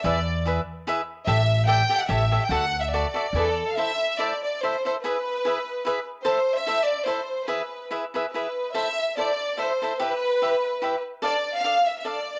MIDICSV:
0, 0, Header, 1, 4, 480
1, 0, Start_track
1, 0, Tempo, 410116
1, 47, Time_signature, 3, 2, 24, 8
1, 3407, Tempo, 421053
1, 5807, Tempo, 413508
1, 14372, End_track
2, 0, Start_track
2, 0, Title_t, "Violin section"
2, 0, Program_c, 0, 48
2, 70, Note_on_c, 0, 74, 80
2, 510, Note_off_c, 0, 74, 0
2, 1472, Note_on_c, 0, 76, 101
2, 1924, Note_off_c, 0, 76, 0
2, 1957, Note_on_c, 0, 79, 121
2, 2305, Note_off_c, 0, 79, 0
2, 2326, Note_on_c, 0, 78, 87
2, 2433, Note_on_c, 0, 76, 91
2, 2440, Note_off_c, 0, 78, 0
2, 2816, Note_off_c, 0, 76, 0
2, 2852, Note_on_c, 0, 79, 80
2, 2925, Note_off_c, 0, 79, 0
2, 2929, Note_on_c, 0, 78, 110
2, 3294, Note_on_c, 0, 76, 71
2, 3298, Note_off_c, 0, 78, 0
2, 3405, Note_off_c, 0, 76, 0
2, 3420, Note_on_c, 0, 74, 72
2, 3914, Note_on_c, 0, 69, 85
2, 4157, Note_off_c, 0, 74, 0
2, 4282, Note_off_c, 0, 69, 0
2, 4283, Note_on_c, 0, 77, 70
2, 4363, Note_off_c, 0, 77, 0
2, 4376, Note_on_c, 0, 76, 103
2, 4854, Note_off_c, 0, 76, 0
2, 4880, Note_on_c, 0, 74, 87
2, 5127, Note_off_c, 0, 74, 0
2, 5146, Note_on_c, 0, 74, 69
2, 5333, Note_off_c, 0, 74, 0
2, 5370, Note_on_c, 0, 72, 78
2, 5608, Note_off_c, 0, 72, 0
2, 5642, Note_on_c, 0, 72, 74
2, 5728, Note_off_c, 0, 72, 0
2, 5828, Note_on_c, 0, 71, 89
2, 6985, Note_off_c, 0, 71, 0
2, 7236, Note_on_c, 0, 72, 85
2, 7576, Note_off_c, 0, 72, 0
2, 7607, Note_on_c, 0, 76, 95
2, 7941, Note_on_c, 0, 74, 82
2, 7970, Note_off_c, 0, 76, 0
2, 8171, Note_off_c, 0, 74, 0
2, 8171, Note_on_c, 0, 72, 71
2, 8651, Note_on_c, 0, 71, 67
2, 8654, Note_off_c, 0, 72, 0
2, 9135, Note_off_c, 0, 71, 0
2, 9615, Note_on_c, 0, 71, 68
2, 10078, Note_off_c, 0, 71, 0
2, 10143, Note_on_c, 0, 76, 89
2, 10618, Note_off_c, 0, 76, 0
2, 10637, Note_on_c, 0, 74, 84
2, 11073, Note_off_c, 0, 74, 0
2, 11132, Note_on_c, 0, 72, 77
2, 11592, Note_off_c, 0, 72, 0
2, 11620, Note_on_c, 0, 71, 99
2, 12765, Note_off_c, 0, 71, 0
2, 13045, Note_on_c, 0, 74, 97
2, 13367, Note_off_c, 0, 74, 0
2, 13422, Note_on_c, 0, 77, 104
2, 13742, Note_off_c, 0, 77, 0
2, 13760, Note_on_c, 0, 76, 80
2, 13886, Note_off_c, 0, 76, 0
2, 13900, Note_on_c, 0, 76, 57
2, 13967, Note_off_c, 0, 76, 0
2, 13984, Note_on_c, 0, 74, 87
2, 14345, Note_off_c, 0, 74, 0
2, 14372, End_track
3, 0, Start_track
3, 0, Title_t, "Cavaquinho"
3, 0, Program_c, 1, 24
3, 50, Note_on_c, 1, 64, 68
3, 55, Note_on_c, 1, 68, 71
3, 66, Note_on_c, 1, 76, 72
3, 68, Note_on_c, 1, 71, 58
3, 207, Note_off_c, 1, 64, 0
3, 209, Note_off_c, 1, 68, 0
3, 215, Note_off_c, 1, 76, 0
3, 216, Note_off_c, 1, 71, 0
3, 533, Note_on_c, 1, 64, 61
3, 544, Note_on_c, 1, 68, 65
3, 555, Note_on_c, 1, 71, 54
3, 557, Note_on_c, 1, 76, 61
3, 689, Note_off_c, 1, 64, 0
3, 695, Note_off_c, 1, 68, 0
3, 701, Note_off_c, 1, 71, 0
3, 701, Note_off_c, 1, 76, 0
3, 1019, Note_on_c, 1, 64, 60
3, 1024, Note_on_c, 1, 68, 76
3, 1029, Note_on_c, 1, 71, 81
3, 1039, Note_on_c, 1, 76, 80
3, 1172, Note_off_c, 1, 64, 0
3, 1174, Note_off_c, 1, 68, 0
3, 1176, Note_off_c, 1, 71, 0
3, 1182, Note_off_c, 1, 76, 0
3, 1491, Note_on_c, 1, 67, 70
3, 1491, Note_on_c, 1, 69, 70
3, 1496, Note_on_c, 1, 76, 85
3, 1499, Note_on_c, 1, 74, 76
3, 1647, Note_off_c, 1, 67, 0
3, 1647, Note_off_c, 1, 69, 0
3, 1649, Note_off_c, 1, 76, 0
3, 1650, Note_off_c, 1, 74, 0
3, 1956, Note_on_c, 1, 67, 62
3, 1959, Note_on_c, 1, 69, 63
3, 1970, Note_on_c, 1, 76, 70
3, 1971, Note_on_c, 1, 74, 70
3, 2117, Note_off_c, 1, 67, 0
3, 2119, Note_off_c, 1, 69, 0
3, 2124, Note_off_c, 1, 76, 0
3, 2125, Note_off_c, 1, 74, 0
3, 2215, Note_on_c, 1, 67, 57
3, 2225, Note_on_c, 1, 69, 53
3, 2230, Note_on_c, 1, 74, 63
3, 2233, Note_on_c, 1, 76, 55
3, 2352, Note_off_c, 1, 67, 0
3, 2357, Note_off_c, 1, 69, 0
3, 2360, Note_off_c, 1, 74, 0
3, 2361, Note_off_c, 1, 76, 0
3, 2439, Note_on_c, 1, 67, 65
3, 2450, Note_on_c, 1, 73, 66
3, 2451, Note_on_c, 1, 69, 64
3, 2456, Note_on_c, 1, 76, 67
3, 2599, Note_off_c, 1, 67, 0
3, 2604, Note_off_c, 1, 73, 0
3, 2605, Note_off_c, 1, 69, 0
3, 2607, Note_off_c, 1, 76, 0
3, 2707, Note_on_c, 1, 67, 61
3, 2714, Note_on_c, 1, 73, 55
3, 2716, Note_on_c, 1, 69, 57
3, 2717, Note_on_c, 1, 76, 59
3, 2838, Note_off_c, 1, 67, 0
3, 2841, Note_off_c, 1, 73, 0
3, 2842, Note_off_c, 1, 69, 0
3, 2843, Note_off_c, 1, 76, 0
3, 2934, Note_on_c, 1, 66, 56
3, 2940, Note_on_c, 1, 69, 84
3, 2944, Note_on_c, 1, 74, 75
3, 2944, Note_on_c, 1, 76, 74
3, 3086, Note_off_c, 1, 66, 0
3, 3088, Note_off_c, 1, 69, 0
3, 3090, Note_off_c, 1, 76, 0
3, 3091, Note_off_c, 1, 74, 0
3, 3435, Note_on_c, 1, 66, 59
3, 3439, Note_on_c, 1, 74, 71
3, 3440, Note_on_c, 1, 69, 56
3, 3449, Note_on_c, 1, 76, 58
3, 3575, Note_off_c, 1, 66, 0
3, 3577, Note_off_c, 1, 74, 0
3, 3578, Note_off_c, 1, 69, 0
3, 3582, Note_off_c, 1, 76, 0
3, 3669, Note_on_c, 1, 66, 46
3, 3669, Note_on_c, 1, 69, 47
3, 3686, Note_on_c, 1, 76, 55
3, 3690, Note_on_c, 1, 74, 59
3, 3799, Note_off_c, 1, 66, 0
3, 3799, Note_off_c, 1, 69, 0
3, 3808, Note_off_c, 1, 76, 0
3, 3810, Note_off_c, 1, 74, 0
3, 3905, Note_on_c, 1, 64, 54
3, 3909, Note_on_c, 1, 68, 58
3, 3918, Note_on_c, 1, 71, 53
3, 3922, Note_on_c, 1, 74, 62
3, 4054, Note_off_c, 1, 64, 0
3, 4056, Note_off_c, 1, 68, 0
3, 4060, Note_off_c, 1, 71, 0
3, 4062, Note_off_c, 1, 74, 0
3, 4389, Note_on_c, 1, 64, 53
3, 4398, Note_on_c, 1, 69, 65
3, 4400, Note_on_c, 1, 76, 54
3, 4409, Note_on_c, 1, 72, 53
3, 4535, Note_off_c, 1, 64, 0
3, 4540, Note_off_c, 1, 69, 0
3, 4541, Note_off_c, 1, 76, 0
3, 4545, Note_off_c, 1, 72, 0
3, 4860, Note_on_c, 1, 64, 49
3, 4869, Note_on_c, 1, 69, 47
3, 4872, Note_on_c, 1, 76, 55
3, 4880, Note_on_c, 1, 72, 59
3, 5013, Note_off_c, 1, 64, 0
3, 5017, Note_off_c, 1, 69, 0
3, 5019, Note_off_c, 1, 76, 0
3, 5023, Note_off_c, 1, 72, 0
3, 5369, Note_on_c, 1, 64, 57
3, 5370, Note_on_c, 1, 72, 50
3, 5372, Note_on_c, 1, 69, 55
3, 5381, Note_on_c, 1, 76, 55
3, 5504, Note_off_c, 1, 64, 0
3, 5505, Note_off_c, 1, 72, 0
3, 5506, Note_off_c, 1, 69, 0
3, 5510, Note_off_c, 1, 76, 0
3, 5617, Note_on_c, 1, 64, 45
3, 5626, Note_on_c, 1, 76, 58
3, 5629, Note_on_c, 1, 69, 44
3, 5631, Note_on_c, 1, 72, 50
3, 5733, Note_off_c, 1, 64, 0
3, 5737, Note_off_c, 1, 76, 0
3, 5739, Note_off_c, 1, 69, 0
3, 5740, Note_off_c, 1, 72, 0
3, 5832, Note_on_c, 1, 64, 61
3, 5837, Note_on_c, 1, 68, 69
3, 5842, Note_on_c, 1, 71, 59
3, 5848, Note_on_c, 1, 76, 69
3, 5976, Note_off_c, 1, 64, 0
3, 5979, Note_off_c, 1, 68, 0
3, 5981, Note_off_c, 1, 71, 0
3, 5984, Note_off_c, 1, 76, 0
3, 6307, Note_on_c, 1, 64, 59
3, 6311, Note_on_c, 1, 68, 55
3, 6324, Note_on_c, 1, 71, 63
3, 6329, Note_on_c, 1, 76, 63
3, 6452, Note_off_c, 1, 64, 0
3, 6454, Note_off_c, 1, 68, 0
3, 6460, Note_off_c, 1, 71, 0
3, 6463, Note_off_c, 1, 76, 0
3, 6772, Note_on_c, 1, 64, 58
3, 6790, Note_on_c, 1, 68, 70
3, 6793, Note_on_c, 1, 71, 73
3, 6795, Note_on_c, 1, 76, 74
3, 6922, Note_off_c, 1, 64, 0
3, 6931, Note_off_c, 1, 68, 0
3, 6933, Note_off_c, 1, 71, 0
3, 6934, Note_off_c, 1, 76, 0
3, 7233, Note_on_c, 1, 64, 73
3, 7237, Note_on_c, 1, 69, 77
3, 7237, Note_on_c, 1, 72, 65
3, 7246, Note_on_c, 1, 76, 86
3, 7389, Note_off_c, 1, 64, 0
3, 7391, Note_off_c, 1, 69, 0
3, 7391, Note_off_c, 1, 72, 0
3, 7395, Note_off_c, 1, 76, 0
3, 7719, Note_on_c, 1, 64, 52
3, 7727, Note_on_c, 1, 69, 57
3, 7735, Note_on_c, 1, 72, 55
3, 7747, Note_on_c, 1, 76, 65
3, 7869, Note_off_c, 1, 64, 0
3, 7873, Note_off_c, 1, 69, 0
3, 7877, Note_off_c, 1, 72, 0
3, 7882, Note_off_c, 1, 76, 0
3, 8177, Note_on_c, 1, 64, 58
3, 8191, Note_on_c, 1, 69, 66
3, 8197, Note_on_c, 1, 72, 67
3, 8202, Note_on_c, 1, 76, 62
3, 8336, Note_off_c, 1, 64, 0
3, 8343, Note_off_c, 1, 69, 0
3, 8346, Note_off_c, 1, 72, 0
3, 8349, Note_off_c, 1, 76, 0
3, 8662, Note_on_c, 1, 64, 60
3, 8666, Note_on_c, 1, 68, 74
3, 8669, Note_on_c, 1, 71, 70
3, 8674, Note_on_c, 1, 76, 65
3, 8817, Note_off_c, 1, 64, 0
3, 8819, Note_off_c, 1, 68, 0
3, 8820, Note_off_c, 1, 71, 0
3, 8823, Note_off_c, 1, 76, 0
3, 9161, Note_on_c, 1, 64, 53
3, 9167, Note_on_c, 1, 71, 54
3, 9172, Note_on_c, 1, 68, 49
3, 9174, Note_on_c, 1, 76, 62
3, 9309, Note_off_c, 1, 64, 0
3, 9312, Note_off_c, 1, 71, 0
3, 9314, Note_off_c, 1, 68, 0
3, 9315, Note_off_c, 1, 76, 0
3, 9432, Note_on_c, 1, 64, 47
3, 9445, Note_on_c, 1, 71, 52
3, 9446, Note_on_c, 1, 68, 52
3, 9455, Note_on_c, 1, 76, 56
3, 9553, Note_off_c, 1, 64, 0
3, 9559, Note_off_c, 1, 71, 0
3, 9560, Note_off_c, 1, 68, 0
3, 9564, Note_off_c, 1, 76, 0
3, 9668, Note_on_c, 1, 64, 48
3, 9678, Note_on_c, 1, 71, 50
3, 9679, Note_on_c, 1, 68, 49
3, 9685, Note_on_c, 1, 76, 55
3, 9809, Note_off_c, 1, 64, 0
3, 9814, Note_off_c, 1, 71, 0
3, 9815, Note_off_c, 1, 68, 0
3, 9818, Note_off_c, 1, 76, 0
3, 10134, Note_on_c, 1, 69, 61
3, 10139, Note_on_c, 1, 64, 65
3, 10140, Note_on_c, 1, 76, 67
3, 10147, Note_on_c, 1, 72, 60
3, 10286, Note_off_c, 1, 69, 0
3, 10288, Note_off_c, 1, 64, 0
3, 10289, Note_off_c, 1, 76, 0
3, 10292, Note_off_c, 1, 72, 0
3, 10627, Note_on_c, 1, 64, 47
3, 10636, Note_on_c, 1, 69, 60
3, 10645, Note_on_c, 1, 72, 51
3, 10651, Note_on_c, 1, 76, 55
3, 10775, Note_off_c, 1, 64, 0
3, 10779, Note_off_c, 1, 69, 0
3, 10784, Note_off_c, 1, 72, 0
3, 10786, Note_off_c, 1, 76, 0
3, 11093, Note_on_c, 1, 64, 56
3, 11099, Note_on_c, 1, 69, 56
3, 11108, Note_on_c, 1, 72, 58
3, 11114, Note_on_c, 1, 76, 58
3, 11249, Note_off_c, 1, 64, 0
3, 11252, Note_off_c, 1, 69, 0
3, 11257, Note_off_c, 1, 72, 0
3, 11260, Note_off_c, 1, 76, 0
3, 11379, Note_on_c, 1, 64, 42
3, 11385, Note_on_c, 1, 69, 50
3, 11392, Note_on_c, 1, 72, 50
3, 11398, Note_on_c, 1, 76, 58
3, 11497, Note_off_c, 1, 64, 0
3, 11500, Note_off_c, 1, 69, 0
3, 11504, Note_off_c, 1, 72, 0
3, 11507, Note_off_c, 1, 76, 0
3, 11585, Note_on_c, 1, 67, 72
3, 11587, Note_on_c, 1, 64, 68
3, 11591, Note_on_c, 1, 71, 69
3, 11609, Note_on_c, 1, 76, 60
3, 11734, Note_off_c, 1, 67, 0
3, 11735, Note_off_c, 1, 64, 0
3, 11737, Note_off_c, 1, 71, 0
3, 11746, Note_off_c, 1, 76, 0
3, 12078, Note_on_c, 1, 67, 57
3, 12081, Note_on_c, 1, 64, 48
3, 12088, Note_on_c, 1, 76, 55
3, 12089, Note_on_c, 1, 71, 59
3, 12220, Note_off_c, 1, 67, 0
3, 12222, Note_off_c, 1, 64, 0
3, 12226, Note_off_c, 1, 71, 0
3, 12226, Note_off_c, 1, 76, 0
3, 12541, Note_on_c, 1, 64, 63
3, 12548, Note_on_c, 1, 67, 62
3, 12557, Note_on_c, 1, 71, 63
3, 12565, Note_on_c, 1, 76, 63
3, 12690, Note_off_c, 1, 64, 0
3, 12694, Note_off_c, 1, 67, 0
3, 12698, Note_off_c, 1, 71, 0
3, 12702, Note_off_c, 1, 76, 0
3, 13009, Note_on_c, 1, 62, 65
3, 13009, Note_on_c, 1, 69, 66
3, 13015, Note_on_c, 1, 74, 81
3, 13027, Note_on_c, 1, 77, 78
3, 13161, Note_off_c, 1, 62, 0
3, 13161, Note_off_c, 1, 69, 0
3, 13164, Note_off_c, 1, 74, 0
3, 13170, Note_off_c, 1, 77, 0
3, 13495, Note_on_c, 1, 62, 55
3, 13501, Note_on_c, 1, 69, 60
3, 13509, Note_on_c, 1, 74, 53
3, 13516, Note_on_c, 1, 77, 56
3, 13644, Note_off_c, 1, 62, 0
3, 13647, Note_off_c, 1, 69, 0
3, 13651, Note_off_c, 1, 74, 0
3, 13654, Note_off_c, 1, 77, 0
3, 13969, Note_on_c, 1, 69, 53
3, 13973, Note_on_c, 1, 62, 57
3, 13983, Note_on_c, 1, 74, 56
3, 13992, Note_on_c, 1, 77, 65
3, 14122, Note_off_c, 1, 69, 0
3, 14124, Note_off_c, 1, 62, 0
3, 14129, Note_off_c, 1, 74, 0
3, 14133, Note_off_c, 1, 77, 0
3, 14372, End_track
4, 0, Start_track
4, 0, Title_t, "Upright bass"
4, 0, Program_c, 2, 32
4, 47, Note_on_c, 2, 40, 93
4, 675, Note_off_c, 2, 40, 0
4, 1489, Note_on_c, 2, 33, 96
4, 2111, Note_off_c, 2, 33, 0
4, 2445, Note_on_c, 2, 33, 100
4, 2757, Note_off_c, 2, 33, 0
4, 2917, Note_on_c, 2, 38, 87
4, 3548, Note_off_c, 2, 38, 0
4, 3883, Note_on_c, 2, 40, 75
4, 4198, Note_off_c, 2, 40, 0
4, 14372, End_track
0, 0, End_of_file